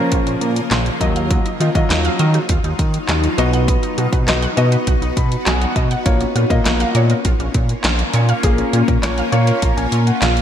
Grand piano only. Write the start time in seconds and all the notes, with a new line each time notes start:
Already playing: F3 C#4 A#4
1.01 F#3 F4 D#5
1.60 F4 D#5
1.75 F#3 F4 D#5
3.38 B3 F#4 D#5
4.27 B3 F#4 D#5
4.57 B3 F#4 D#5
5.17 B5
5.46 G#5
5.61 F#5
5.76 D#5
6.06 A#3 F4 C#5
6.35 F4 C#5
6.50 A#3 F4 D#5
8.43 A#3 F4 G#4
9.03 A#3 F4 C#5
9.32 A#3 F4 C#5 C#6
9.62 A#5
9.77 G#5
10.07 F#5
10.22 F5